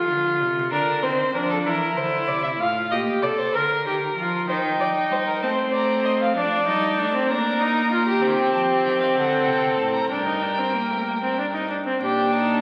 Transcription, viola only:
0.00 0.70 F4 medium
0.72 1.04 D4 medium
1.03 1.33 C4 medium
1.33 1.67 D4 medium
1.65 2.62 E4 medium
2.60 2.93 F4 medium
2.92 3.23 G4 medium
3.23 3.57 A4 medium
3.55 3.86 A#4 medium
3.86 3.94 G4 medium
4.18 4.48 F4 medium
4.50 5.44 D#4 medium
5.43 6.35 C4 medium
6.35 6.66 D4 medium
6.67 7.00 D#4 medium
6.99 7.14 D4 medium
7.14 7.32 C4 medium
7.30 7.62 D4 medium
7.60 7.91 D#4 medium
7.91 8.06 F4 medium
8.07 8.23 G4 medium
8.22 10.10 C4 medium
10.11 10.26 D4 medium
10.27 10.43 D#4 medium
10.42 10.60 D4 medium
10.58 10.75 C4 medium
10.73 10.92 A#3 medium
10.90 11.06 A3 medium
11.07 11.13 A#3 medium
11.22 11.38 C4 medium
11.38 11.45 D4 medium
11.54 11.69 D#4 medium
11.70 11.76 D4 medium
11.87 12.01 C4 medium
12.02 12.61 D4 medium

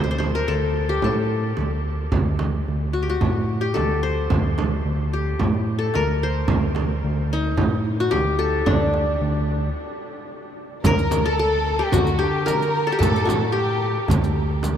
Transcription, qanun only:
0.00 0.51 G4 medium
0.00 0.41 A4 medium
0.00 0.10 C5 medium
0.11 0.18 C5 medium
0.18 1.24 C5 medium
0.35 0.54 A#4 medium
0.48 1.04 A4 medium
0.89 2.15 G4 medium
1.04 2.21 A4 medium
2.93 3.09 F#4 medium
3.03 3.16 G4 soft
3.10 3.67 F#4 medium
3.61 4.87 G4 medium
3.74 4.91 A4 medium
4.03 5.08 C5 medium
5.13 6.39 G4 medium
5.79 6.01 A4 medium
5.95 7.08 A#4 medium
6.23 7.29 C5 medium
7.33 8.72 D#4 medium
8.00 8.17 F#4 medium
8.11 9.36 G4 medium
8.39 9.56 A4 medium
8.66 10.26 D4 medium
10.86 11.32 A#4 loud
11.26 11.39 A4 medium
11.39 12.52 A4 medium
11.79 11.99 G4 medium
11.93 12.25 F#4 medium
12.19 12.92 G4 medium
12.46 12.93 A#4 medium
12.87 12.98 A4 medium
12.92 13.31 G4 medium
12.99 14.16 A4 medium
13.25 13.58 F#4 medium
13.52 14.77 G4 medium

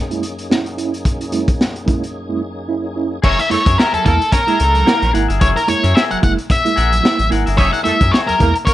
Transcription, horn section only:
3.25 3.34 C#4 loud
3.25 3.34 C#5 loud
3.52 3.61 A3 medium
3.52 3.61 A4 medium
4.05 4.14 A#3 medium
4.05 4.14 A#4 loud
4.32 4.41 C#4 medium
4.32 4.41 C#5 medium
4.59 4.81 A3 medium
4.59 4.81 A4 loud
4.86 5.08 A#3 loud
4.86 5.08 A#4 loud
7.58 7.67 C#4 loud
7.58 7.67 C#5 loud
7.85 7.94 A3 medium
7.85 7.94 A4 medium
8.40 8.49 A#3 medium
8.40 8.50 A#4 medium
8.66 8.74 A#3 medium
8.66 8.74 A#4 medium

